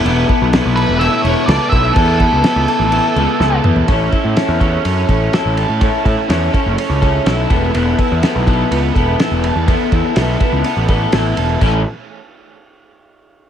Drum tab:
CC |x-x-x-x-x-x-x-x-|x-x-x-x-x-x-----|----------------|----------------|
RD |----------------|----------------|x-x-x-x-x-x-x-x-|x-x-x-x-x-x-x-x-|
SD |----o-------o---|----o-------o---|----o-------o---|----o-------o---|
T2 |----------------|--------------o-|----------------|----------------|
FT |----------------|---------------o|----------------|----------------|
BD |--o-----------o-|o-o-------------|o-o---o---o-----|o-o---o---o---o-|

CC |----------------|----------------|x---------------|
RD |x-x-x-x-x-x-x-x-|x-x-x-x-x-x-x-x-|----------------|
SD |----o-------o---|----o-------o---|----------------|
T2 |----------------|----------------|----------------|
FT |----------------|----------------|----------------|
BD |--o---o---o-----|o-o---o---o-----|o---------------|